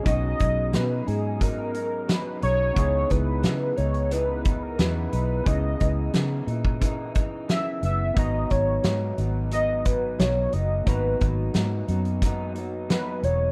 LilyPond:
<<
  \new Staff \with { instrumentName = "Soft synth lead" } { \time 4/4 \key cis \dorian \tempo 4 = 89 dis''4 b'8 gis'8 ais'4 b'8 cis''8~ | cis''8 b'4 cis''8 b'8. ais'16 b'4 | dis''4 r2 e''8 e''8 | dis''8 cis''4 r8 dis''8 b'8 cis''8 dis''8 |
b'4 r2 b'8 cis''8 | }
  \new Staff \with { instrumentName = "Tine electric piano" } { \time 4/4 \key cis \dorian <b cis' dis' fis'>1 | <b dis' e' gis'>1 | <cis' e' gis' b'>1 | <b dis' fis' ais''>1 |
<ais b dis' fis' ais''>1 | }
  \new Staff \with { instrumentName = "Clean electric guitar" } { \clef bass \time 4/4 \key cis \dorian <b, fis gis dis'>8 <fis gis dis'>8 <b, fis gis dis'>8 <fis gis dis'>8 <b, fis gis dis'>8 <fis gis dis'>8 <b, fis gis dis'>8 <fis gis dis'>8 | <cis e b dis'>8 <e b dis'>8 <cis e b dis'>8 <e b dis'>8 <cis e b dis'>8 <e b dis'>8 <cis e b dis'>8 <e b dis'>8 | <cis e b dis'>8 <e b dis'>8 <cis e b dis'>8 <e dis'>8 <cis e dis'>8 <e dis'>8 <cis e>8 <e b>8 | <gis, fis b dis'>8 <fis b dis'>8 <gis, fis b dis'>8 <fis b dis'>8 <gis, fis b dis'>8 <fis b dis'>8 <gis, fis b dis'>8 <fis b dis'>8 |
<gis, fis b dis'>8 <fis b dis'>8 <gis, fis b dis'>8 <fis b dis'>8 <gis, fis b dis'>8 <fis b dis'>8 <gis, fis b dis'>8 <fis b dis'>8 | }
  \new Staff \with { instrumentName = "Fingered electric bass" } { \clef bass \time 4/4 \key cis \dorian b,,8 b,,8 b,8 gis,2 b,,8 | cis,8 cis,8 cis8 cis,4. e,8 b,,8 | cis,8 cis,8 cis8 ais,2 fis,,8 | gis,,8 gis,,8 gis,8 gis,,4. b,,8 fis,,8 |
gis,,8 gis,,8 gis,8 fis,2 e,,8 | }
  \new DrumStaff \with { instrumentName = "Drums" } \drummode { \time 4/4 <hh bd>8 <hh bd>8 <hh sn>8 hh8 <hh bd>8 hh8 <hh sn>8 hh8 | <hh bd>8 <hh bd>8 <hh sn>8 hh16 hh16 hh8 <hh bd>8 <hh sn>8 hh8 | <hh bd>8 <hh bd>8 <hh sn>8 hh16 bd16 <hh bd>8 <hh bd>8 <hh sn>8 hh8 | <hh bd>8 <hh bd>8 <hh sn>8 hh8 hh8 <hh bd>8 <hh sn>8 hh8 |
<hh bd>8 <hh bd>8 <hh sn>8 hh16 hh16 <hh bd>8 hh8 <hh sn>8 hh8 | }
>>